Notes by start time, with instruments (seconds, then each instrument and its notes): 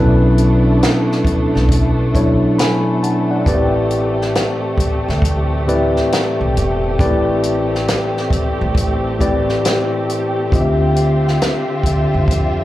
Already playing: upright bass B1, tine electric piano B2 F#3 C#4 E4 A4 B4, string section A3 B3 D4
0.00 tine electric piano D4
0.38 closed hi-hat
0.83 snare, closed hi-hat
1.12 snare
1.25 muted upright bass stroke, kick, closed hi-hat
1.55 upright bass B1, snare
1.69 kick, closed hi-hat
2.14 tine electric piano B2 F#3 D4 E4 A4 C#5, kick, closed hi-hat
2.58 tine electric piano G#5 B5, snare, closed hi-hat
3.03 tine electric piano F#5 A5, closed hi-hat
3.31 tine electric piano D5 F#5
3.46 upright bass A1, tine electric piano A2 E3 C4 G4 B4 D5, string section C4 G4, kick, closed hi-hat
3.91 closed hi-hat
4.21 snare
4.35 snare, closed hi-hat
4.78 muted upright bass stroke, kick, closed hi-hat
5.08 upright bass D2, snare
5.22 kick, closed hi-hat
5.67 tine electric piano A2 E3 C4 G4 B4 D5, closed hi-hat
5.76 tine electric piano E5
5.96 snare
6.12 snare, closed hi-hat
6.41 upright bass B1
6.57 upright bass E1, closed hi-hat
6.99 upright bass A1, tine electric piano A2 E3 C4 G4 B4 D5, kick, closed hi-hat
7.43 closed hi-hat
7.75 snare
7.88 snare, closed hi-hat
8.17 snare
8.30 muted upright bass stroke, kick, closed hi-hat
8.61 upright bass A1
8.75 kick, closed hi-hat
9.19 tine electric piano A2 E3 C4 G4 B4 D5, kick, closed hi-hat
9.49 snare
9.65 snare, closed hi-hat
10.09 closed hi-hat
10.51 upright bass D2, tine electric piano D3 C4 F4 G4 D#5, string section D3 F4 E5, kick, closed hi-hat
10.60 tine electric piano E5
10.96 closed hi-hat
11.28 snare
11.42 snare, closed hi-hat
11.83 muted upright bass stroke, kick, closed hi-hat
12.14 upright bass F2
12.28 kick, closed hi-hat